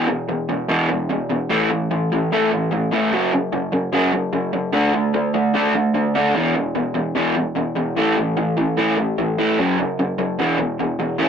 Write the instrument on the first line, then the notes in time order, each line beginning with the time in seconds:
overdriven electric guitar
0.08 E2 B2
0.29 E2 B2
0.49 E2 B2
0.69 E2 B2 E3
0.89 E2 B2
1.10 E2 B2
1.30 E2 B2
1.50 A2 E3 A3
1.71 A2 E3
1.91 A2 E3
2.12 A2 E3
2.32 A2 E3 A3
2.51 A2 E3
2.71 A2 E3
2.91 A2 E3 A3
3.12 F#2 C#3 F#3
3.33 F#2 C#3
3.52 F#2 C#3
3.72 F#2 C#3
3.92 F#2 C#3 F#3
4.13 F#2 C#3
4.33 F#2 C#3
4.53 F#2 C#3
4.73 D3 A3 D4
4.94 D3 A3
5.14 D3 A3
5.34 D3 A3
5.54 D3 A3 D4
5.75 D3 A3
5.94 D3 A3
6.15 D3 A3 D4
6.35 E2 B2 E3
6.55 E2 B2
6.75 E2 B2
6.94 E2 B2
7.15 E2 B2 E3
7.36 E2 B2
7.55 E2 B2
7.75 E2 B2
7.96 A2 E3 A3
8.17 A2 E3
8.37 A2 E3
8.57 A2 E3
8.78 A2 E3 A3
8.98 A2 E3
9.18 A2 E3
9.38 A2 E3 A3
9.59 F#2 C#3 F#3
9.79 F#2 C#3
9.99 F#2 C#3
10.19 F#2 C#3
10.39 E2 B2 E3
10.59 E2 B2
10.79 E2 B2
10.99 E2 B2
11.18 A2 E3 A3 C#4 E4